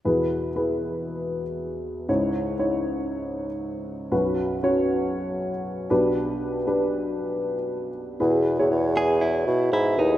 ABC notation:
X:1
M:4/4
L:1/16
Q:"Swing 16ths" 1/4=118
K:E
V:1 name="Clean electric guitar"
z16 | z16 | z16 | z16 |
z6 G2 E4 E2 D2 |]
V:2 name="Upright piano"
[EGB]3 z [EGB]6- [EGB] z4 z | [DEc]3 z [DEc]6- [DEc] z4 z | [CFB]3 z [CFc]6- [CFc] z3 [=D=GB]2- | [=D=GB]3 z [DGB]6- [DGB] z4 z |
[EGB]3 [EGc]6- [EGc] z4 [EGB]2 |]
V:3 name="Upright piano" clef=bass
[E,,B,,]16 | [C,,G,,]16 | [B,,,F,,]12- [B,,,F,,]2 [B,,,B,,]2- | [B,,,B,,]12- [B,,,B,,]2 z2 |
B,,6 z8 z2 |]
V:4 name="Bassoon" clef=bass
z16 | z16 | z16 | z16 |
E,,3 E,, E,,6 B,,2 G,,2 D,,2 |]